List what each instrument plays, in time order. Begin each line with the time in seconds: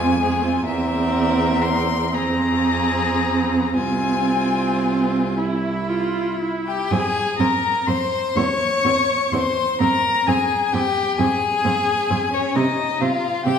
Already playing: cello F2, viola C4, violin F4 G#5
0.20 viola G#3, violin G#4
0.42 viola C4, violin F4
0.65 cello E2, viola C4, violin A#4 E5
1.62 violin C6
2.14 cello F2, viola C4, violin G#4 A#5
3.75 cello C2, viola C4, violin F4 G#5
5.38 violin E4, viola E4
5.89 viola F4
6.42 viola E4
6.67 violin G4 G5
6.91 cello F2, viola C4, violin G#4 G#5
7.39 cello F2, viola C4, violin A#4 A#5
7.87 cello F2, viola C4, violin C5 C6
8.36 cello E2, viola C4, violin C#5 C#6
8.84 cello E2, viola C4
9.32 cello E2, viola C4, violin C5 C6
9.79 cello F2, viola C4, violin A#4 A#5
10.27 cello F2, viola C4, violin G#4 G#5
10.73 cello F2, viola C4, violin G4 G5
11.18 cello F2, viola C4, violin G#4 G#5
11.65 cello F2, viola C4
12.10 cello F2, viola C4
12.32 violin C#4 C#5
12.55 cello C3, viola C4, violin D#4 D#5
13.01 cello C3, viola C4, violin F4 F5
13.45 cello C3, viola C4, violin G4 G5